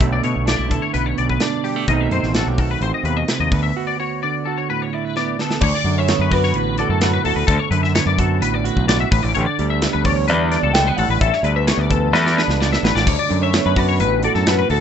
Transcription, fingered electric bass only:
0.00 0.19 B1 loud
0.24 0.34 B2 medium
0.36 0.54 B1 medium
0.59 0.78 B1 medium
0.95 1.13 B1 medium
1.18 1.37 B1 medium
1.88 2.07 B1 loud
2.11 2.20 F#2 medium
2.23 2.42 A1 medium
2.47 2.74 B1 medium
2.81 2.90 A1 medium
3.03 3.23 D#2 medium
3.40 3.49 D#2 medium
3.52 3.70 D2 medium
5.61 5.71 D2 loud
5.84 6.12 F#2 medium
6.19 6.54 F#2 medium
6.54 6.82 A1 medium
6.89 7.17 F#2 medium
7.25 7.34 D2 medium
7.35 7.45 D2 medium
7.48 7.57 D2 loud
7.71 7.99 F#2 medium
8.06 8.42 F#2 medium
8.42 8.69 A1 medium
8.76 9.04 B1 medium
9.12 9.21 A1 medium
9.24 9.33 A1 medium
9.37 9.45 A1 loud
9.59 9.86 D2 medium
9.95 10.29 D2 medium
10.29 10.56 E2 medium
10.63 10.90 C#2 medium
10.98 11.07 A1 medium
11.08 11.18 A1 medium
11.21 11.30 A1 loud
11.43 11.71 D2 medium
11.78 12.13 D2 medium
12.13 12.41 E2 loud
12.48 12.76 C#2 medium
12.83 12.92 A1 loud
12.95 13.04 A1 medium
13.07 13.16 D2 loud
13.31 13.58 F#2 medium
13.66 14.01 F#2 medium
13.99 14.27 A1 medium
14.35 14.62 F#2 medium
14.70 14.79 D2 medium

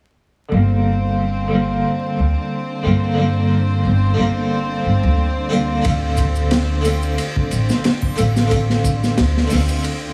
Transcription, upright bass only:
0.52 1.82 G1 medium
2.18 2.34 D2 medium
2.85 3.82 G2 medium
3.85 4.15 G1 medium
4.18 4.82 G1 medium
4.85 5.01 G1 medium
5.03 5.82 D2 medium
5.85 7.15 D2 medium
7.52 7.68 A1 medium
8.18 9.15 A1 medium
9.19 9.48 D2 medium
9.52 10.13 D2 medium

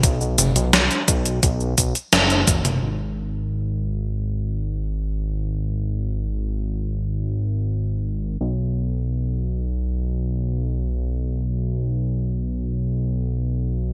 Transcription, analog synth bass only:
0.03 0.19 B1 loud
0.21 0.37 B1 medium
0.38 0.54 F#1 medium
0.56 0.72 B1 loud
0.73 0.89 B1 medium
1.08 1.40 B1 medium
1.43 1.75 B1 loud
1.78 1.94 B1 medium
2.13 2.45 F#1 loud
2.48 2.80 F#1 medium
2.83 8.37 G#1 medium
8.41 13.93 B1 medium

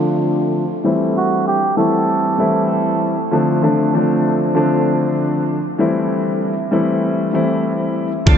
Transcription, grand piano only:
0.00 0.62 D3 medium
0.00 0.62 F3 medium
0.00 0.62 A3 medium
0.00 0.62 C4 medium
0.00 0.63 D4 loud
0.84 1.58 E3 medium
0.84 1.58 G3 medium
0.84 1.58 A3 medium
0.84 1.58 C4 medium
0.84 1.59 E4 medium
1.76 2.35 E3 medium
1.76 2.35 G3 medium
1.76 2.35 A3 medium
1.76 2.36 C4 medium
1.76 2.36 E4 medium
2.38 3.12 E3 medium
2.38 3.12 G3 medium
2.38 3.12 A3 medium
2.38 3.13 C4 medium
2.38 3.13 E4 loud
3.31 3.61 D3 medium
3.31 3.61 F3 medium
3.31 3.61 A3 medium
3.31 3.62 C4 medium
3.31 3.62 D4 loud
3.62 3.92 D3 medium
3.62 3.92 F3 medium
3.62 3.92 A3 medium
3.62 3.92 C4 medium
3.62 3.93 D4 loud
3.93 4.52 D3 medium
3.93 4.52 F3 medium
3.93 4.52 A3 medium
3.93 4.52 C4 medium
3.93 4.53 D4 loud
4.55 5.56 D3 medium
4.55 5.57 F3 medium
4.55 5.57 A3 medium
4.55 5.57 C4 medium
4.55 5.57 D4 loud
5.78 6.52 E3 medium
5.78 6.52 G3 medium
5.78 6.53 A3 medium
5.78 6.53 C4 medium
5.78 6.53 E4 medium
6.71 7.30 E3 medium
6.71 7.30 G3 medium
6.71 7.30 A3 medium
6.71 7.31 C4 medium
6.71 7.31 E4 loud
7.33 8.07 E3 medium
7.33 8.07 G3 medium
7.33 8.07 A3 medium
7.33 8.08 C4 medium
7.33 8.08 E4 loud
8.26 8.38 D3 loud
8.26 8.38 F3 medium
8.26 8.38 A3 medium
8.26 8.38 C4 medium
8.26 8.38 D4 loud

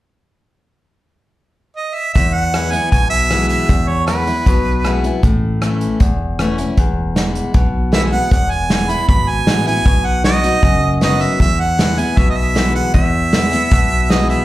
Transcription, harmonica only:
1.77 1.97 D#5 medium
1.95 2.14 E5 medium
2.14 2.35 E5 medium
2.34 2.73 F#5 medium
2.72 2.91 G#5 medium
2.92 3.10 G#5 medium
3.10 3.47 E5 loud
3.49 3.90 E5 medium
3.88 4.06 C#5 medium
4.07 4.99 B4 medium
7.94 8.02 E5 medium
8.13 8.30 F#5 medium
8.32 8.53 F#5 medium
8.51 8.91 G#5 medium
8.90 9.09 B5 medium
9.09 9.31 B5 medium
9.29 9.67 G#5 medium
9.68 10.07 G#5 medium
10.06 10.24 F#5 medium
10.25 10.98 D#5 medium
11.03 11.23 D#5 medium
11.22 11.41 E5 medium
11.41 11.62 E5 medium
11.60 12.01 F#5 medium
11.99 12.19 G#5 medium
12.18 12.29 E5 medium
12.30 12.39 D#5 medium
12.37 12.75 E5 medium
12.75 12.93 F#5 medium
12.94 14.12 E5 medium
14.11 14.29 D#5 medium
14.30 14.45 E5 medium

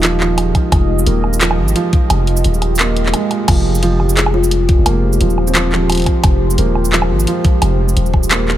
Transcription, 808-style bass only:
0.00 0.54 D#1 medium
0.72 1.06 F1 loud
1.07 1.60 D#1 medium
1.59 1.75 G#1 medium
2.10 2.44 F1 loud
2.45 3.14 D#1 medium
3.48 4.77 F1 loud
4.79 4.86 F1 medium
4.86 5.20 F1 loud
5.21 6.06 D#1 medium
6.24 6.58 F1 loud
6.58 7.12 D#1 medium
7.10 7.26 G#1 medium
7.62 7.96 F1 loud
7.97 8.57 D#1 medium

